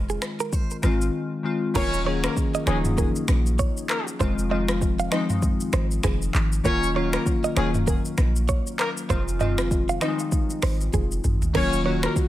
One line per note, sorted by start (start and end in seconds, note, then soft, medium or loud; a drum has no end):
0.00 0.18 F1 loud
0.00 0.11 D#3 medium
0.00 0.12 G#3 medium
0.00 0.12 C4 medium
0.00 0.13 F4 medium
0.09 0.19 G#4 medium
0.09 shaker soft
0.22 finger snap medium
0.22 cross-stick medium
0.22 shaker medium
0.40 0.53 A#4 medium
0.40 shaker medium
0.53 0.76 C5 medium
0.53 kick loud
0.53 shaker medium
0.71 shaker medium
0.82 1.10 G#1 medium
0.82 1.24 D#3 medium
0.82 1.24 G#3 medium
0.82 1.25 C4 medium
0.82 1.25 F4 medium
0.82 finger snap medium
0.82 cross-stick medium
0.82 shaker medium
1.01 shaker medium
1.43 1.66 D#3 medium
1.43 1.66 G#3 medium
1.43 1.66 C4 medium
1.43 1.67 F4 medium
1.74 2.28 D#1 loud
1.74 1.96 D#3 medium
1.74 1.97 F#3 medium
1.74 1.97 A#3 medium
1.74 2.00 C#4 loud
1.74 1.97 C#4 medium
1.74 1.97 F4 loud
1.74 1.89 A#4 loud
1.74 2.00 C#5 loud
1.74 kick loud
1.74 crash loud
1.74 shaker medium
1.94 shaker medium
2.04 2.46 D#3 medium
2.04 2.47 F#3 medium
2.04 2.47 A#3 medium
2.04 2.47 C#4 medium
2.04 2.48 G#4 medium
2.04 2.20 C#5 medium
2.24 2.34 A#3 medium
2.24 2.34 A#4 medium
2.24 finger snap medium
2.24 cross-stick loud
2.24 shaker medium
2.37 kick medium
2.37 shaker medium
2.55 2.64 D#5 medium
2.55 shaker soft
2.66 3.08 D#1 medium
2.66 3.48 D#3 medium
2.66 2.74 F3 medium
2.66 2.78 G#3 medium
2.66 3.49 A#3 medium
2.66 3.49 C#4 medium
2.66 3.49 D#4 loud
2.66 2.78 G#4 medium
2.66 2.81 C#5 medium
2.66 finger snap medium
2.66 cross-stick loud
2.66 shaker soft
2.73 3.52 F#3 medium
2.85 mid tom medium
2.85 shaker medium
2.98 3.21 A#4 medium
2.98 kick loud
2.98 shaker medium
3.16 shaker medium
3.28 3.70 A#1 loud
3.28 finger snap medium
3.28 cross-stick medium
3.28 shaker medium
3.46 shaker medium
3.59 3.82 C#5 medium
3.59 kick loud
3.59 shaker medium
3.77 shaker medium
3.89 4.04 A#3 medium
3.89 4.04 A#4 medium
3.89 finger snap medium
3.89 cross-stick medium
3.89 clap medium
3.89 shaker medium
4.08 shaker medium
4.19 5.08 F1 loud
4.19 4.41 D#3 medium
4.19 4.41 F3 medium
4.19 4.42 G#3 medium
4.19 4.42 C4 medium
4.19 4.42 F4 medium
4.19 4.34 C5 loud
4.19 kick loud
4.19 shaker medium
4.39 shaker medium
4.49 4.91 D#3 medium
4.49 4.92 F3 medium
4.49 4.92 G#3 medium
4.49 4.92 C4 medium
4.49 4.93 F4 medium
4.49 4.64 D#5 medium
4.68 finger snap medium
4.68 cross-stick loud
4.68 shaker medium
4.81 kick medium
4.81 shaker medium
4.99 5.09 F5 medium
4.99 shaker soft
5.11 5.93 D#3 medium
5.11 5.93 F3 medium
5.11 5.93 G#3 medium
5.11 5.94 C4 medium
5.11 5.94 D#4 loud
5.11 5.26 D#5 medium
5.11 finger snap medium
5.11 cross-stick loud
5.11 shaker medium
5.30 mid tom medium
5.30 shaker medium
5.42 kick loud
5.42 shaker medium
5.60 shaker medium
5.73 5.99 G#1 medium
5.73 5.87 C5 medium
5.73 finger snap medium
5.73 cross-stick medium
5.73 shaker medium
5.91 shaker medium
6.03 6.30 F1 medium
6.03 6.27 G#4 medium
6.03 finger snap medium
6.03 kick loud
6.03 cross-stick loud
6.03 shaker medium
6.22 shaker medium
6.34 6.61 G#1 medium
6.34 clap medium
6.34 shaker medium
6.52 shaker medium
6.64 7.17 D#1 loud
6.64 6.86 D#3 medium
6.64 6.86 F#3 medium
6.64 6.87 A#3 medium
6.64 6.89 C#4 loud
6.64 6.87 C#4 medium
6.64 6.87 F4 loud
6.64 6.79 A#4 loud
6.64 6.89 C#5 loud
6.64 kick loud
6.64 shaker medium
6.83 shaker medium
6.94 7.36 D#3 medium
6.94 7.37 F#3 medium
6.94 7.37 A#3 medium
6.94 7.37 C#4 medium
6.94 7.37 F4 loud
6.94 7.09 C#5 medium
7.13 7.24 A#3 medium
7.13 7.24 A#4 medium
7.13 finger snap medium
7.13 cross-stick loud
7.13 shaker medium
7.26 kick medium
7.26 shaker medium
7.44 7.54 D#5 medium
7.44 shaker soft
7.55 7.98 D#1 loud
7.55 8.38 D#3 medium
7.55 8.38 F#3 medium
7.55 7.67 G#3 medium
7.55 8.38 A#3 medium
7.55 8.39 C#4 medium
7.55 8.39 F4 loud
7.55 7.67 G#4 medium
7.55 7.70 C#5 medium
7.55 finger snap medium
7.55 cross-stick loud
7.55 shaker medium
7.74 mid tom medium
7.74 shaker medium
7.87 8.11 A#4 medium
7.87 kick loud
7.87 shaker medium
8.05 shaker medium
8.18 8.59 A#1 loud
8.18 finger snap medium
8.18 cross-stick medium
8.18 shaker medium
8.36 shaker medium
8.49 8.72 C#5 medium
8.49 kick loud
8.49 shaker medium
8.67 shaker medium
8.79 8.90 A#3 medium
8.79 8.90 A#4 medium
8.79 finger snap medium
8.79 cross-stick medium
8.79 clap medium
8.79 shaker medium
8.97 shaker medium
9.08 9.98 F1 loud
9.08 9.31 D#3 medium
9.08 9.31 F3 medium
9.08 9.31 G#3 medium
9.08 9.32 C4 medium
9.08 9.32 F4 loud
9.08 9.23 C5 loud
9.08 kick loud
9.08 shaker medium
9.28 shaker medium
9.39 9.81 D#3 medium
9.39 9.81 F3 medium
9.39 9.82 G#3 medium
9.39 9.82 C4 medium
9.39 9.82 F4 loud
9.39 9.54 D#5 medium
9.39 mid tom loud
9.39 shaker soft
9.58 finger snap medium
9.58 cross-stick loud
9.58 shaker medium
9.71 kick medium
9.71 shaker medium
9.89 9.99 F5 medium
9.89 shaker soft
10.01 10.83 D#3 medium
10.01 10.83 F3 medium
10.01 10.09 G3 medium
10.01 10.84 C4 medium
10.01 10.84 D#4 loud
10.01 10.15 D#5 medium
10.01 finger snap medium
10.01 cross-stick loud
10.01 shaker medium
10.08 10.87 G#3 medium
10.19 shaker medium
10.32 kick loud
10.32 shaker medium
10.50 shaker medium
10.62 10.89 G#1 medium
10.62 10.76 C5 medium
10.62 finger snap medium
10.62 cross-stick medium
10.62 open hi-hat medium
10.62 shaker medium
10.81 shaker medium
10.93 11.20 F1 medium
10.93 11.17 G#4 medium
10.93 kick loud
10.93 high tom medium
10.93 shaker medium
11.12 shaker medium
11.24 11.50 G#1 medium
11.24 mid tom medium
11.24 shaker medium
11.42 floor tom loud
11.42 shaker medium
11.53 12.07 D#1 loud
11.53 11.76 D#3 medium
11.53 11.76 F#3 medium
11.53 11.76 A#3 medium
11.53 11.79 C#4 loud
11.53 11.77 C#4 medium
11.53 11.77 F4 loud
11.53 11.68 A#4 loud
11.53 11.79 C#5 loud
11.53 kick loud
11.53 crash medium
11.73 shaker medium
11.84 12.26 D#3 medium
11.84 12.26 F#3 medium
11.84 12.27 A#3 medium
11.84 12.27 C#4 medium
11.84 12.27 F#4 medium
11.84 11.99 C#5 medium
12.03 12.14 A#3 medium
12.03 12.14 A#4 medium
12.03 finger snap medium
12.03 cross-stick loud
12.03 shaker soft
12.16 kick medium
12.16 shaker medium